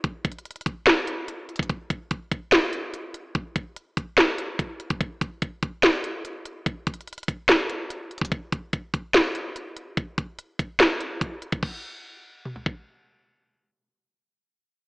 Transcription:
0.04 kick, closed hi-hat
0.25 kick, closed hi-hat
0.32 closed hi-hat
0.39 closed hi-hat
0.45 closed hi-hat
0.51 closed hi-hat
0.56 closed hi-hat
0.61 closed hi-hat
0.66 kick, closed hi-hat
0.87 snare, closed hi-hat
1.07 closed hi-hat
1.28 closed hi-hat
1.49 closed hi-hat
1.56 kick, closed hi-hat
1.63 closed hi-hat
1.70 kick, closed hi-hat
1.90 kick, closed hi-hat
2.11 kick, closed hi-hat
2.32 kick, closed hi-hat
2.52 snare, closed hi-hat
2.73 closed hi-hat
2.94 closed hi-hat
3.14 closed hi-hat
3.35 kick, closed hi-hat
3.56 kick, closed hi-hat
3.76 closed hi-hat
3.97 kick, closed hi-hat
4.18 snare, closed hi-hat
4.38 closed hi-hat
4.59 kick, closed hi-hat
4.80 closed hi-hat
4.90 kick, closed hi-hat
5.01 kick, closed hi-hat
5.21 kick, closed hi-hat
5.42 kick, closed hi-hat
5.63 kick, closed hi-hat
5.83 snare, closed hi-hat
6.04 closed hi-hat
6.25 closed hi-hat
6.46 closed hi-hat
6.66 kick, closed hi-hat
6.87 kick, closed hi-hat
6.94 closed hi-hat
7.01 closed hi-hat
7.07 closed hi-hat
7.13 closed hi-hat
7.18 closed hi-hat
7.23 closed hi-hat
7.28 kick, closed hi-hat
7.49 snare, closed hi-hat
7.70 closed hi-hat
7.90 closed hi-hat
8.11 closed hi-hat
8.18 kick, closed hi-hat
8.25 closed hi-hat
8.32 kick, closed hi-hat
8.52 kick, closed hi-hat
8.73 kick, closed hi-hat
8.94 kick, closed hi-hat
9.14 snare, closed hi-hat
9.35 closed hi-hat
9.56 closed hi-hat
9.77 closed hi-hat
9.97 kick, closed hi-hat
10.18 kick, closed hi-hat
10.39 closed hi-hat
10.59 kick, closed hi-hat
10.80 snare, closed hi-hat
11.01 closed hi-hat
11.21 kick, closed hi-hat
11.42 closed hi-hat
11.52 kick, closed hi-hat
11.63 kick, crash
12.45 mid tom
12.56 floor tom
12.66 kick

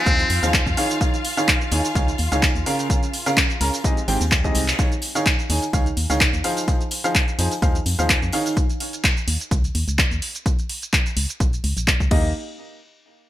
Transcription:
Already playing: C4 F4 F5
0.06 D#2 F3 D#4 G#4 C5 F5, kick, closed hi-hat, tambourine, shaker
0.19 closed hi-hat, shaker
0.30 F2, open hi-hat, tambourine
0.43 D#2 F3 D#4 G#4 C5 F5, closed hi-hat, tambourine, shaker
0.54 kick, clap, closed hi-hat, shaker
0.66 F2, kick, closed hi-hat, shaker
0.77 D#3 D#4 G#4 C#5 F5, open hi-hat, tambourine
0.90 closed hi-hat, tambourine, shaker
1.01 D#3 D#4 G#4 C#5 F5, kick, closed hi-hat, tambourine, shaker
1.14 closed hi-hat, shaker
1.25 open hi-hat, tambourine
1.37 D#3 D#4 G#4 C#5 F5, closed hi-hat, tambourine, shaker
1.47 kick, clap, closed hi-hat, tambourine, shaker
1.61 closed hi-hat, shaker
1.71 D#2 D#3 D#4 G#4 C#5 G#5, open hi-hat, tambourine
1.84 closed hi-hat, tambourine, shaker
1.95 C#2 D#3 D#4 G#4 C#5 F5, kick, closed hi-hat, tambourine, shaker
2.08 closed hi-hat, shaker
2.18 D#2, open hi-hat, tambourine
2.31 C#2 D#3 D#4 G#4 C#5 F5, closed hi-hat, tambourine, shaker
2.43 kick, clap, closed hi-hat, tambourine, shaker
2.55 D#2, closed hi-hat, shaker
2.66 C#3 C#4 G#4 A#4 F5, open hi-hat, tambourine
2.79 closed hi-hat, tambourine, shaker
2.90 C#3 C#4 G#4 A#4 F5, kick, closed hi-hat, tambourine, shaker
3.03 closed hi-hat, shaker
3.14 open hi-hat, tambourine
3.26 C#3 C#4 G#4 A#4 F5, closed hi-hat, tambourine, shaker
3.37 kick, clap, closed hi-hat, shaker
3.50 closed hi-hat, shaker
3.61 C#2 C#4 G#4 A#4 A#5, open hi-hat, tambourine
3.74 closed hi-hat, tambourine, shaker
3.84 G#2 C4 G4 G#4 D#5, kick, closed hi-hat, tambourine, shaker
3.97 closed hi-hat, shaker
4.08 G#1 G#2 C4 G4 G#4 G5, open hi-hat, tambourine
4.21 D#2, closed hi-hat, tambourine, shaker
4.32 kick, clap, closed hi-hat, shaker
4.44 G#2 C4 G4 G#4 D#5, kick, closed hi-hat, shaker
4.55 C2, open hi-hat, tambourine
4.68 clap, closed hi-hat, tambourine, shaker
4.78 D#3 D#4 G#4 C#5 F5, kick, closed hi-hat, tambourine, shaker
4.92 closed hi-hat, shaker
5.02 open hi-hat, tambourine
5.15 D#3 D#4 G#4 C#5 F5, closed hi-hat, tambourine, shaker
5.26 kick, clap, closed hi-hat, shaker
5.39 closed hi-hat, shaker
5.50 D#2 D#3 D#4 G#4 C#5 G#5, open hi-hat, tambourine
5.62 closed hi-hat, tambourine, shaker
5.73 C#2 D#3 D#4 G#4 C#5 F5, kick, closed hi-hat, tambourine, shaker
5.86 closed hi-hat, shaker
5.97 D#2, open hi-hat, tambourine
6.10 C#2 D#3 D#4 G#4 C#5 F5, closed hi-hat, tambourine, shaker
6.21 kick, clap, closed hi-hat, shaker
6.33 D#2, closed hi-hat, shaker
6.44 F3 D#4 G#4 C5 F5, open hi-hat, tambourine
6.57 closed hi-hat, tambourine, shaker
6.68 F3 D#4 G#4 C5 F5, kick, closed hi-hat, tambourine, shaker
6.81 closed hi-hat, shaker
6.91 open hi-hat, tambourine
7.04 F3 D#4 G#4 C5 F5, closed hi-hat, tambourine, shaker
7.15 kick, clap, closed hi-hat, tambourine, shaker
7.28 closed hi-hat, shaker
7.39 F2 F3 D#4 G#4 C5 G#5, open hi-hat, tambourine
7.51 closed hi-hat, tambourine, shaker
7.62 D#2 F3 D#4 G#4 C5 F5, kick, closed hi-hat, tambourine, shaker
7.75 closed hi-hat, shaker
7.86 F2, open hi-hat, tambourine
7.99 D#2 F3 D#4 G#4 C5 F5, closed hi-hat, tambourine, shaker
8.10 kick, clap, closed hi-hat, shaker
8.22 F2, closed hi-hat, shaker
8.32 D#3 D#4 G#4 C#5 F5, open hi-hat, tambourine
8.46 closed hi-hat, tambourine, shaker
8.57 kick, closed hi-hat, shaker
8.70 closed hi-hat, shaker
8.80 open hi-hat
8.93 closed hi-hat, shaker
9.04 kick, clap, closed hi-hat, shaker
9.17 closed hi-hat, shaker
9.28 D#2, open hi-hat
9.40 closed hi-hat, shaker
9.51 C#2, kick, closed hi-hat, shaker
9.64 closed hi-hat, shaker
9.75 D#2, open hi-hat
9.88 C#2, closed hi-hat, shaker
9.99 kick, clap, closed hi-hat, shaker
10.11 D#2, closed hi-hat, shaker
10.22 open hi-hat
10.35 closed hi-hat, shaker
10.46 kick, closed hi-hat, shaker
10.59 closed hi-hat, shaker
10.69 open hi-hat
10.82 closed hi-hat, shaker
10.93 kick, clap, closed hi-hat, shaker
11.06 closed hi-hat, shaker
11.17 C#2, open hi-hat
11.29 closed hi-hat, shaker
11.40 A#1, kick, closed hi-hat, shaker
11.53 closed hi-hat, shaker
11.64 C#2, open hi-hat
11.77 A#1, closed hi-hat, shaker
11.88 kick, clap, closed hi-hat, shaker
12.00 C#2, kick, closed hi-hat, shaker
12.11 D#2 A#3 D#4 G4 D#5, kick, crash

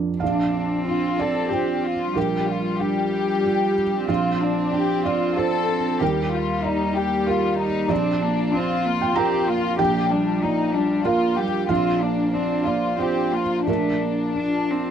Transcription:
Already playing: A#1 F2 D4 F4 A#4
0.20 A#1 C4 D4 F4 D5 F5
0.86 D4 F4
1.18 A4 D5
1.50 F4 G4 C5
1.83 F4
2.16 A#1 G3 G4 A#4
2.48 F4
2.80 D4 G4
3.44 F4 G4
4.07 A#1 C4 F4 F5
4.40 D4
4.73 D4 G4
5.05 F4 D5
5.36 F4 A4 C5
6.00 D#2 G3 A#3 G4 A#4 D5
6.33 F4
6.64 D#4 D5
6.95 G4
7.27 F4 G4 A#4
7.58 D#4
7.89 A#1 C4 D4 F4 D5
8.22 A#3
8.52 C4 F4
8.85 A#3
9.02 G5
9.16 C4 F4 G4 A#4 A#5
9.47 A#3 F4
9.79 A#1 A#3 G4 G5
10.10 G3 D4
10.42 A#3 D#4 D5
10.74 G3 D4
11.04 A#3 F4 A#4 F5
11.36 G3 G4
11.69 A#1 C4 F4 C5 F5
12.00 A#3 D4
12.33 C4 D4
12.65 A#3 F4 D5
12.98 C4 F4 G4 C5
13.32 A#3 F4
13.66 A#1 A3 D4 F4 A#4 A5
14.01 A#3
14.35 D4
14.70 C4

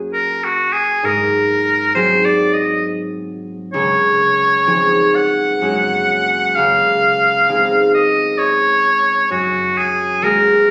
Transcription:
Already playing: F#2 A#3 C#4 F#4 G#4 A#4
0.13 A#4
0.44 F#4
0.73 G#4
1.03 G#2 A#4
1.95 F#3 C4 D#4 G#4 C5
2.25 D5
2.54 D#5
3.73 C#2 C#5
4.67 F3 C4 D#4 G#4
5.15 F#5
5.61 F#2 G#3 A#3 C#4 G#4
6.56 C#2 F5
7.49 G#3 C4 D#4 G#4
7.94 D#5
8.39 C#5
9.30 F#2 F#4
9.78 G#4
10.22 G#3 A#3 F#4 G#4 A#4

